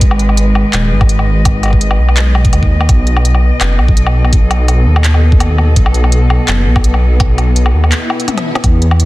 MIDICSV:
0, 0, Header, 1, 5, 480
1, 0, Start_track
1, 0, Tempo, 359281
1, 21, Time_signature, 4, 2, 24, 8
1, 12093, End_track
2, 0, Start_track
2, 0, Title_t, "Cello section"
2, 0, Program_c, 0, 48
2, 0, Note_on_c, 0, 56, 96
2, 0, Note_on_c, 0, 68, 90
2, 0, Note_on_c, 0, 71, 73
2, 0, Note_on_c, 0, 75, 83
2, 3858, Note_on_c, 0, 47, 80
2, 3859, Note_off_c, 0, 56, 0
2, 3861, Note_off_c, 0, 68, 0
2, 4398, Note_on_c, 0, 59, 92
2, 4881, Note_on_c, 0, 69, 84
2, 5039, Note_off_c, 0, 71, 0
2, 11537, Note_off_c, 0, 69, 0
2, 11540, Note_off_c, 0, 47, 0
2, 11541, Note_on_c, 0, 52, 92
2, 11542, Note_off_c, 0, 75, 0
2, 12093, Note_off_c, 0, 52, 0
2, 12093, Note_off_c, 0, 59, 0
2, 12093, End_track
3, 0, Start_track
3, 0, Title_t, "Detuned saw bass"
3, 0, Program_c, 1, 39
3, 21, Note_on_c, 1, 32, 102
3, 853, Note_off_c, 1, 32, 0
3, 981, Note_on_c, 1, 27, 93
3, 1221, Note_on_c, 1, 32, 100
3, 1241, Note_off_c, 1, 27, 0
3, 2647, Note_off_c, 1, 32, 0
3, 2661, Note_on_c, 1, 35, 81
3, 3379, Note_on_c, 1, 39, 100
3, 3399, Note_off_c, 1, 35, 0
3, 3846, Note_off_c, 1, 39, 0
3, 3861, Note_on_c, 1, 35, 104
3, 4693, Note_off_c, 1, 35, 0
3, 4821, Note_on_c, 1, 30, 92
3, 5060, Note_on_c, 1, 35, 100
3, 5080, Note_off_c, 1, 30, 0
3, 6486, Note_off_c, 1, 35, 0
3, 6502, Note_on_c, 1, 39, 83
3, 7687, Note_off_c, 1, 39, 0
3, 7699, Note_on_c, 1, 35, 105
3, 8532, Note_off_c, 1, 35, 0
3, 8661, Note_on_c, 1, 30, 93
3, 8901, Note_on_c, 1, 35, 97
3, 8921, Note_off_c, 1, 30, 0
3, 10327, Note_off_c, 1, 35, 0
3, 10341, Note_on_c, 1, 39, 84
3, 10581, Note_off_c, 1, 39, 0
3, 11541, Note_on_c, 1, 40, 102
3, 12093, Note_off_c, 1, 40, 0
3, 12093, End_track
4, 0, Start_track
4, 0, Title_t, "Swell"
4, 0, Program_c, 2, 103
4, 10581, Note_on_c, 2, 60, 61
4, 11541, Note_off_c, 2, 60, 0
4, 12093, End_track
5, 0, Start_track
5, 0, Title_t, "Drums"
5, 17, Note_on_c, 9, 42, 82
5, 20, Note_on_c, 9, 36, 127
5, 148, Note_on_c, 9, 77, 81
5, 151, Note_off_c, 9, 42, 0
5, 154, Note_off_c, 9, 36, 0
5, 259, Note_on_c, 9, 42, 39
5, 282, Note_off_c, 9, 77, 0
5, 387, Note_on_c, 9, 77, 51
5, 392, Note_off_c, 9, 42, 0
5, 499, Note_on_c, 9, 42, 69
5, 521, Note_off_c, 9, 77, 0
5, 633, Note_off_c, 9, 42, 0
5, 738, Note_on_c, 9, 77, 80
5, 872, Note_off_c, 9, 77, 0
5, 980, Note_on_c, 9, 39, 127
5, 980, Note_on_c, 9, 42, 84
5, 980, Note_on_c, 9, 77, 53
5, 1113, Note_off_c, 9, 39, 0
5, 1113, Note_off_c, 9, 42, 0
5, 1113, Note_off_c, 9, 77, 0
5, 1347, Note_on_c, 9, 77, 76
5, 1349, Note_on_c, 9, 36, 111
5, 1459, Note_on_c, 9, 42, 68
5, 1481, Note_off_c, 9, 77, 0
5, 1482, Note_off_c, 9, 36, 0
5, 1590, Note_on_c, 9, 77, 53
5, 1593, Note_off_c, 9, 42, 0
5, 1723, Note_off_c, 9, 77, 0
5, 1940, Note_on_c, 9, 36, 127
5, 1941, Note_on_c, 9, 42, 83
5, 1941, Note_on_c, 9, 77, 80
5, 2074, Note_off_c, 9, 36, 0
5, 2075, Note_off_c, 9, 42, 0
5, 2075, Note_off_c, 9, 77, 0
5, 2180, Note_on_c, 9, 42, 37
5, 2180, Note_on_c, 9, 77, 50
5, 2212, Note_off_c, 9, 77, 0
5, 2212, Note_on_c, 9, 77, 42
5, 2243, Note_off_c, 9, 77, 0
5, 2243, Note_on_c, 9, 77, 33
5, 2275, Note_off_c, 9, 77, 0
5, 2275, Note_on_c, 9, 77, 28
5, 2309, Note_on_c, 9, 36, 65
5, 2313, Note_off_c, 9, 42, 0
5, 2409, Note_off_c, 9, 77, 0
5, 2419, Note_on_c, 9, 42, 68
5, 2443, Note_off_c, 9, 36, 0
5, 2548, Note_on_c, 9, 77, 77
5, 2552, Note_off_c, 9, 42, 0
5, 2681, Note_off_c, 9, 77, 0
5, 2787, Note_on_c, 9, 77, 51
5, 2898, Note_on_c, 9, 39, 127
5, 2898, Note_on_c, 9, 42, 80
5, 2920, Note_off_c, 9, 77, 0
5, 3031, Note_off_c, 9, 39, 0
5, 3031, Note_off_c, 9, 42, 0
5, 3139, Note_on_c, 9, 77, 78
5, 3269, Note_on_c, 9, 36, 111
5, 3269, Note_on_c, 9, 42, 37
5, 3273, Note_off_c, 9, 77, 0
5, 3378, Note_off_c, 9, 42, 0
5, 3378, Note_on_c, 9, 42, 64
5, 3378, Note_on_c, 9, 77, 50
5, 3403, Note_off_c, 9, 36, 0
5, 3509, Note_on_c, 9, 36, 63
5, 3511, Note_off_c, 9, 42, 0
5, 3511, Note_off_c, 9, 77, 0
5, 3643, Note_off_c, 9, 36, 0
5, 3749, Note_on_c, 9, 77, 76
5, 3860, Note_off_c, 9, 77, 0
5, 3860, Note_on_c, 9, 36, 127
5, 3860, Note_on_c, 9, 42, 76
5, 3860, Note_on_c, 9, 77, 52
5, 3993, Note_off_c, 9, 42, 0
5, 3993, Note_off_c, 9, 77, 0
5, 3994, Note_off_c, 9, 36, 0
5, 4099, Note_on_c, 9, 42, 35
5, 4229, Note_on_c, 9, 77, 76
5, 4233, Note_off_c, 9, 42, 0
5, 4342, Note_on_c, 9, 42, 62
5, 4362, Note_off_c, 9, 77, 0
5, 4470, Note_on_c, 9, 77, 52
5, 4475, Note_off_c, 9, 42, 0
5, 4603, Note_off_c, 9, 77, 0
5, 4821, Note_on_c, 9, 39, 123
5, 4821, Note_on_c, 9, 42, 77
5, 4821, Note_on_c, 9, 77, 79
5, 4955, Note_off_c, 9, 39, 0
5, 4955, Note_off_c, 9, 42, 0
5, 4955, Note_off_c, 9, 77, 0
5, 5062, Note_on_c, 9, 77, 51
5, 5190, Note_on_c, 9, 36, 107
5, 5195, Note_off_c, 9, 77, 0
5, 5302, Note_on_c, 9, 42, 63
5, 5323, Note_off_c, 9, 36, 0
5, 5431, Note_on_c, 9, 77, 80
5, 5436, Note_off_c, 9, 42, 0
5, 5564, Note_off_c, 9, 77, 0
5, 5672, Note_on_c, 9, 77, 51
5, 5780, Note_on_c, 9, 42, 77
5, 5781, Note_on_c, 9, 36, 116
5, 5806, Note_off_c, 9, 77, 0
5, 5914, Note_off_c, 9, 36, 0
5, 5914, Note_off_c, 9, 42, 0
5, 6021, Note_on_c, 9, 42, 36
5, 6021, Note_on_c, 9, 77, 79
5, 6154, Note_off_c, 9, 42, 0
5, 6154, Note_off_c, 9, 77, 0
5, 6257, Note_on_c, 9, 42, 65
5, 6257, Note_on_c, 9, 77, 53
5, 6391, Note_off_c, 9, 42, 0
5, 6391, Note_off_c, 9, 77, 0
5, 6628, Note_on_c, 9, 77, 81
5, 6738, Note_on_c, 9, 39, 118
5, 6738, Note_on_c, 9, 42, 76
5, 6761, Note_off_c, 9, 77, 0
5, 6869, Note_on_c, 9, 77, 53
5, 6872, Note_off_c, 9, 39, 0
5, 6872, Note_off_c, 9, 42, 0
5, 7003, Note_off_c, 9, 77, 0
5, 7110, Note_on_c, 9, 36, 105
5, 7219, Note_on_c, 9, 42, 63
5, 7219, Note_on_c, 9, 77, 80
5, 7243, Note_off_c, 9, 36, 0
5, 7353, Note_off_c, 9, 42, 0
5, 7353, Note_off_c, 9, 77, 0
5, 7460, Note_on_c, 9, 77, 54
5, 7593, Note_off_c, 9, 77, 0
5, 7699, Note_on_c, 9, 36, 120
5, 7700, Note_on_c, 9, 42, 81
5, 7829, Note_on_c, 9, 77, 83
5, 7833, Note_off_c, 9, 36, 0
5, 7833, Note_off_c, 9, 42, 0
5, 7940, Note_on_c, 9, 42, 38
5, 7962, Note_off_c, 9, 77, 0
5, 8069, Note_on_c, 9, 77, 53
5, 8074, Note_off_c, 9, 42, 0
5, 8178, Note_on_c, 9, 42, 64
5, 8202, Note_off_c, 9, 77, 0
5, 8312, Note_off_c, 9, 42, 0
5, 8419, Note_on_c, 9, 77, 84
5, 8552, Note_off_c, 9, 77, 0
5, 8660, Note_on_c, 9, 39, 117
5, 8660, Note_on_c, 9, 42, 80
5, 8660, Note_on_c, 9, 77, 56
5, 8794, Note_off_c, 9, 39, 0
5, 8794, Note_off_c, 9, 42, 0
5, 8794, Note_off_c, 9, 77, 0
5, 9029, Note_on_c, 9, 36, 104
5, 9030, Note_on_c, 9, 77, 83
5, 9140, Note_on_c, 9, 42, 66
5, 9162, Note_off_c, 9, 36, 0
5, 9163, Note_off_c, 9, 77, 0
5, 9271, Note_on_c, 9, 77, 56
5, 9274, Note_off_c, 9, 42, 0
5, 9405, Note_off_c, 9, 77, 0
5, 9619, Note_on_c, 9, 42, 86
5, 9619, Note_on_c, 9, 77, 87
5, 9620, Note_on_c, 9, 36, 123
5, 9753, Note_off_c, 9, 42, 0
5, 9753, Note_off_c, 9, 77, 0
5, 9754, Note_off_c, 9, 36, 0
5, 9861, Note_on_c, 9, 42, 39
5, 9861, Note_on_c, 9, 77, 58
5, 9995, Note_off_c, 9, 42, 0
5, 9995, Note_off_c, 9, 77, 0
5, 10101, Note_on_c, 9, 42, 68
5, 10230, Note_on_c, 9, 77, 84
5, 10235, Note_off_c, 9, 42, 0
5, 10364, Note_off_c, 9, 77, 0
5, 10471, Note_on_c, 9, 77, 57
5, 10580, Note_on_c, 9, 39, 116
5, 10580, Note_on_c, 9, 42, 85
5, 10604, Note_off_c, 9, 77, 0
5, 10714, Note_off_c, 9, 39, 0
5, 10714, Note_off_c, 9, 42, 0
5, 10821, Note_on_c, 9, 77, 86
5, 10951, Note_on_c, 9, 42, 38
5, 10954, Note_off_c, 9, 77, 0
5, 11060, Note_off_c, 9, 42, 0
5, 11060, Note_on_c, 9, 42, 67
5, 11060, Note_on_c, 9, 48, 61
5, 11060, Note_on_c, 9, 77, 55
5, 11190, Note_off_c, 9, 42, 0
5, 11190, Note_on_c, 9, 38, 66
5, 11190, Note_on_c, 9, 42, 38
5, 11194, Note_off_c, 9, 48, 0
5, 11194, Note_off_c, 9, 77, 0
5, 11323, Note_off_c, 9, 38, 0
5, 11323, Note_off_c, 9, 42, 0
5, 11427, Note_on_c, 9, 38, 89
5, 11427, Note_on_c, 9, 77, 84
5, 11540, Note_off_c, 9, 77, 0
5, 11540, Note_on_c, 9, 42, 85
5, 11540, Note_on_c, 9, 77, 56
5, 11541, Note_on_c, 9, 36, 120
5, 11561, Note_off_c, 9, 38, 0
5, 11673, Note_off_c, 9, 42, 0
5, 11673, Note_off_c, 9, 77, 0
5, 11675, Note_off_c, 9, 36, 0
5, 11781, Note_on_c, 9, 42, 40
5, 11907, Note_on_c, 9, 77, 84
5, 11915, Note_off_c, 9, 42, 0
5, 12020, Note_on_c, 9, 42, 69
5, 12041, Note_off_c, 9, 77, 0
5, 12093, Note_off_c, 9, 42, 0
5, 12093, End_track
0, 0, End_of_file